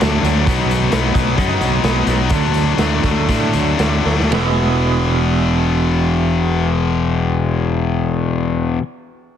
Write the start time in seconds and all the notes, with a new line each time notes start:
Already playing: F#3 D4
0.00 D2 D3 F#3 A3 D4, snare, closed hi-hat
0.23 D2 F#3 A3 D4, closed hi-hat
0.45 B1 B2 F#3 B3 D#4, kick, closed hi-hat
0.71 closed hi-hat
0.91 B1 B2 F#3 B3 D#4, snare, closed hi-hat
1.14 B1 B3, kick, closed hi-hat
1.36 F#2 B2 F#3 B3 D#4, kick, closed hi-hat
1.59 B1 F#3 B3 D#4, closed hi-hat
1.83 B1 B2 F#3 B3 D#4, snare, closed hi-hat
2.06 B1 F#3 B3 D#4, closed hi-hat
2.29 D2 D3 F#3 A3 D4, kick, closed hi-hat
2.54 closed hi-hat
2.77 D2 D3 F#3 A3 D4, snare, closed hi-hat
3.03 D2 A3, kick, closed hi-hat
3.27 A2 D3 F#3 A3 D4, kick, closed hi-hat
3.53 D2 F#3 A3 D4, closed hi-hat
3.79 D2 D3 F#3 A3 D4, snare, closed hi-hat
4.04 D2 F#3 A3 D4, snare
4.20 snare
4.31 E1 E2 B2 E3 G#3 B3, snare, ride bell
4.35 E4